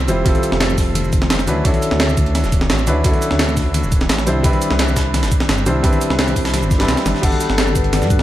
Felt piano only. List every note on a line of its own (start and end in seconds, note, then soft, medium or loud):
0.00 0.08 G3 medium
0.00 0.08 C4 medium
0.00 0.09 E4 medium
0.00 0.09 F4 medium
0.00 0.27 A4 loud
0.08 0.23 G3 medium
0.08 0.24 C4 medium
0.08 0.24 E4 medium
0.08 0.24 F4 medium
0.08 0.24 C5 medium
0.25 1.10 G3 medium
0.25 1.11 C4 medium
0.25 1.11 E4 medium
0.25 1.11 F4 medium
0.25 1.11 A4 loud
1.47 1.62 F#3 medium
1.47 1.63 C#4 medium
1.47 1.63 D4 medium
1.47 1.63 E4 medium
1.47 1.63 B4 medium
1.64 2.50 F#3 medium
1.64 2.50 C#4 medium
1.64 2.50 D4 medium
1.64 2.51 E4 medium
1.64 2.51 A4 loud
2.87 3.02 F#3 medium
2.87 3.03 C#4 medium
2.87 3.03 D4 medium
2.87 3.03 E4 medium
2.87 3.03 B4 medium
3.04 3.89 F#3 medium
3.04 3.90 C#4 medium
3.04 3.90 D4 medium
3.04 3.90 E4 medium
3.04 3.90 A4 loud
4.26 4.42 G3 medium
4.26 4.42 C4 medium
4.26 4.42 D4 medium
4.26 4.42 E4 medium
4.26 4.43 C5 loud
4.43 5.29 G3 loud
4.43 5.29 C4 medium
4.43 5.29 D4 medium
4.43 5.30 E4 medium
4.43 5.30 B4 loud
5.66 5.81 G3 medium
5.66 5.82 C4 medium
5.66 5.82 D4 medium
5.66 5.82 E4 medium
5.66 5.82 C5 medium
5.83 6.68 G3 medium
5.83 6.69 C4 medium
5.83 6.69 D4 medium
5.83 6.69 E4 medium
5.83 6.70 B4 loud
6.79 7.20 G3 medium
6.79 7.21 C4 medium
6.79 7.21 D4 medium
6.79 7.21 E4 medium
6.79 7.22 B4 loud
7.22 8.08 G3 loud
7.22 8.08 B3 medium
7.22 8.08 D4 medium
7.22 8.09 A4 loud
7.22 8.09 F#5 medium